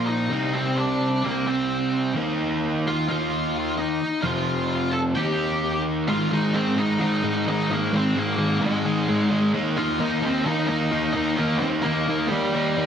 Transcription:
Already playing: overdriven electric guitar A#2 F3 A#3
0.07 lead electric guitar D#4 D#5
0.30 overdriven electric guitar C3 G3 C4
0.53 lead electric guitar C4 C5
0.77 lead electric guitar D4 D5
1.24 overdriven electric guitar C3 G3 C4, lead electric guitar A#3 A#4
1.47 lead electric guitar C4 C5
2.15 overdriven electric guitar D#3 A#3 D#4
2.87 lead electric guitar F4 F5
3.08 overdriven electric guitar D#3 A#3 D#4, lead electric guitar F4 F5
3.77 lead electric guitar D#4 D#5
4.22 overdriven electric guitar F2 C3 F3, lead electric guitar F4 F5
4.91 lead electric guitar A4 A5
5.15 overdriven electric guitar D#3 A#3 D#4, lead electric guitar G4 G5
6.08 overdriven electric guitar G#2 D#3 G#3, lead electric guitar F4 F5
6.31 overdriven electric guitar G#2 D#3 G#3, lead electric guitar D#4 D#5
6.54 overdriven electric guitar G#2 D#3 G#3, lead electric guitar C4 C5
6.77 overdriven electric guitar G#2 D#3 G#3, lead electric guitar D#4 D#5
6.99 overdriven electric guitar G#2 D#3 G#3, lead electric guitar D#4 D#5
7.23 overdriven electric guitar G#2 D#3 G#3
7.47 overdriven electric guitar G#2 D#3 G#3, lead electric guitar D#4 D#5
7.70 overdriven electric guitar G#2 D#3 G#3, lead electric guitar A#3 A#4
7.93 overdriven electric guitar G#2 D#3 G#3, lead electric guitar C4 C5
8.15 overdriven electric guitar G#2 D#3 G#3, lead electric guitar A#3 A#4
8.37 overdriven electric guitar G#2 D#3 G#3
8.60 overdriven electric guitar G#2 D#3 G#3, lead electric guitar G#3
8.65 lead electric guitar G#4
8.85 overdriven electric guitar G#2 D#3 G#3
9.08 overdriven electric guitar G#2 D#3 G#3
9.29 overdriven electric guitar G#2 D#3 G#3
9.53 overdriven electric guitar D#3 A#3 D#4
9.77 overdriven electric guitar D#3 A#3 D#4, lead electric guitar F4 F5
9.99 overdriven electric guitar D#3 A#3 D#4, lead electric guitar D#4 D#5
10.22 overdriven electric guitar D#3 A#3 D#4, lead electric guitar C5
10.26 lead electric guitar C4
10.45 overdriven electric guitar D#3 A#3 D#4, lead electric guitar D#4 D#5
10.67 overdriven electric guitar D#3 A#3 D#4, lead electric guitar D#4 D#5
10.91 overdriven electric guitar D#3 A#3 D#4
11.13 overdriven electric guitar D#3 A#3 D#4, lead electric guitar D#4 D#5
11.36 overdriven electric guitar D#3 A#3 D#4, lead electric guitar A#3 A#4
11.58 overdriven electric guitar D#3, lead electric guitar C4 C5
11.62 overdriven electric guitar A#3 D#4
11.82 overdriven electric guitar D#3 A#3 D#4, lead electric guitar A#3 A#4
12.07 overdriven electric guitar D#3 A#3 D#4
12.28 overdriven electric guitar D#3 A#3 D#4, lead electric guitar G3 G4
12.54 overdriven electric guitar D#3 A#3 D#4
12.77 overdriven electric guitar D#3 A#3 D#4

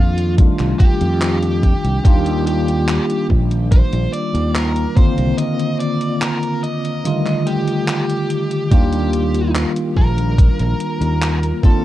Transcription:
Already playing: fretless electric bass F2, tine electric piano D#3 A#3 C4 D4 F4, lead electric guitar F4
0.18 closed hi-hat
0.37 tine electric piano D#3 G3 A3 D4 F4, kick, closed hi-hat
0.59 fretless electric bass C2, clap, closed hi-hat
0.79 lead electric guitar G4, kick, closed hi-hat
1.01 fretless electric bass F2, closed hi-hat
1.22 clap, closed hi-hat
1.43 closed hi-hat
1.63 kick, closed hi-hat
1.84 fretless electric bass C2, closed hi-hat
2.04 fretless electric bass D#2, tine electric piano D#3 G3 A#3 D4 F4, lead electric guitar G4, kick, closed hi-hat
2.26 closed hi-hat
2.46 lead electric guitar G4, closed hi-hat
2.68 closed hi-hat
2.89 clap, closed hi-hat
3.10 closed hi-hat
3.30 fretless electric bass A#1, kick
3.51 closed hi-hat
3.72 lead electric guitar C5, kick, closed hi-hat
3.93 fretless electric bass A#1, closed hi-hat
4.13 lead electric guitar D5, closed hi-hat
4.34 fretless electric bass D#2, closed hi-hat
4.54 lead electric guitar A#4, clap, closed hi-hat
4.76 closed hi-hat
4.96 tine electric piano D3 D#3 A#3 C4 F4, lead electric guitar C5, kick, closed hi-hat
5.18 fretless electric bass C2, closed hi-hat
5.38 lead electric guitar D#5, closed hi-hat
5.59 closed hi-hat
5.80 lead electric guitar D5, closed hi-hat
6.01 closed hi-hat
6.21 lead electric guitar A#4, clap, closed hi-hat
6.43 closed hi-hat
6.63 lead electric guitar D#5, closed hi-hat
6.85 closed hi-hat
7.04 tine electric piano D3 D#3 G3 A3 F4, closed hi-hat
7.26 clap, closed hi-hat
7.47 lead electric guitar G4, closed hi-hat
7.68 closed hi-hat
7.88 lead electric guitar G4, clap, closed hi-hat
8.10 closed hi-hat
8.30 closed hi-hat
8.51 closed hi-hat
8.71 fretless electric bass D#2, tine electric piano D#3 G3 A#3 D4 F4, lead electric guitar G4, kick, closed hi-hat
8.93 closed hi-hat
9.13 closed hi-hat
9.34 closed hi-hat
9.55 clap, closed hi-hat
9.76 closed hi-hat
9.97 fretless electric bass A#1, lead electric guitar A#4, kick
10.18 closed hi-hat
10.38 kick, closed hi-hat
10.59 fretless electric bass A#1, closed hi-hat
10.80 closed hi-hat
11.01 fretless electric bass D#2, closed hi-hat
11.22 clap, closed hi-hat
11.43 closed hi-hat
11.62 tine electric piano D#3 A#3 C4 D4 F4, lead electric guitar A4, kick, closed hi-hat

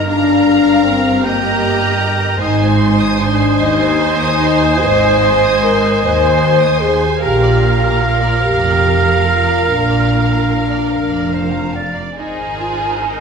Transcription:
Already playing: double bass section G1, cello section G2, clarinet A#4
0.06 french horn section D4, viola section A#4, violin section F5 A#5, cor anglais F5
0.83 french horn section C4
1.23 french horn section A#3, viola section G4, clarinet A#4, violin section D#5 A#5, cor anglais G5
2.39 double bass section G#1, cello section G#2, french horn section D#4, viola section C5, clarinet C5, cor anglais D#5, violin section D#5 G#5
2.61 violin section G#5
2.80 violin section C6
3.00 violin section D#6
3.19 french horn section D4, violin section C6
3.40 violin section G#5
3.59 cello section D#2, double bass section D#2, french horn section D#4, violin section D#5
3.81 violin section G#5
4.01 violin section C6
4.22 violin section D#6
4.44 violin section C6
4.63 violin section G#5
4.83 double bass section G#1, cello section G#2, french horn section C5, violin section D#5
5.04 violin section G#5
5.24 violin section C6
5.43 violin section D#6
5.62 french horn section A#4, violin section C6
5.85 violin section G#5
6.01 double bass section D#2, cello section D#2, french horn section C5, violin section D#5
6.25 violin section G#5
6.43 violin section C6
6.62 violin section D#6
6.80 french horn section G#4, violin section C6
7.00 violin section G#5
7.21 double bass section A#1, cello section A#2, french horn section G4, violin section A#4 F5, viola section A#4, clarinet A#4, cor anglais F5
7.41 violin section D5
7.63 violin section F5
7.83 violin section A#5
8.01 french horn section F4, violin section F5
8.21 violin section D5
8.40 double bass section F1, cello section F2, french horn section G4, violin section A#4
8.61 violin section D5
8.82 violin section F5
9.03 violin section A#5
9.23 french horn section F4, violin section F5
9.45 violin section D5
9.64 double bass section A#1, cello section A#2, french horn section D4, violin section A#4
9.88 violin section D5
10.09 violin section F5
10.30 violin section A#5
10.51 violin section F5
10.70 violin section D5
10.91 double bass section F1, cello section F2, clarinet A#4, violin section A#4
11.11 violin section D5
11.31 clarinet C5, violin section F5
11.52 violin section A#5
11.74 clarinet D5, violin section F5
11.95 violin section D5
12.15 double bass section G#1, viola section D#4 A#4, cello section D#4, violin section G#4 C5, flute G#5
12.58 cello section F4
13.01 cello section D#4

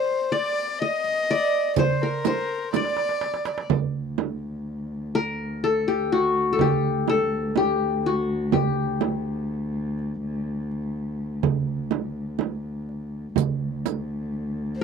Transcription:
Already playing: violin C5, qanun C5 D5
0.32 violin D5, qanun D5, riq, darbuka ka
0.79 violin D#5, qanun D#5
1.04 riq, darbuka ka
1.29 qanun D5, darbuka ka
1.76 violin C5, qanun C5, riq, frame drum, darbuka dum
2.01 violin A#4, qanun A#4, darbuka ka
2.25 qanun C5, riq, darbuka tek, frame drum
2.73 violin D5, qanun D5, riq, darbuka tek, frame drum
2.85 darbuka ka
2.97 darbuka tek
3.09 darbuka ka
3.21 darbuka tek
3.34 darbuka ka
3.45 riq, darbuka tek
3.58 darbuka ka
3.70 cello D2, darbuka dum, frame drum
4.18 darbuka tek, frame drum
5.15 qanun A#4, darbuka ka
5.64 qanun A4
5.87 qanun G4, darbuka ka
6.12 qanun F#4, darbuka ka
6.53 qanun A4
6.59 qanun G4, frame drum, darbuka dum
6.84 darbuka ka
7.08 qanun A4, darbuka tek, frame drum
7.56 qanun G4, darbuka tek, frame drum
8.06 qanun F#4, darbuka ka
8.52 qanun G4, frame drum, darbuka dum
9.01 darbuka tek, frame drum
9.99 darbuka ka
10.71 darbuka ka
11.43 frame drum, darbuka dum
11.67 darbuka ka
11.91 darbuka tek, frame drum
12.39 darbuka tek, frame drum
12.89 darbuka ka
13.36 cello D2, riq, frame drum, darbuka dum
13.86 riq, darbuka tek, frame drum
14.75 violin C5

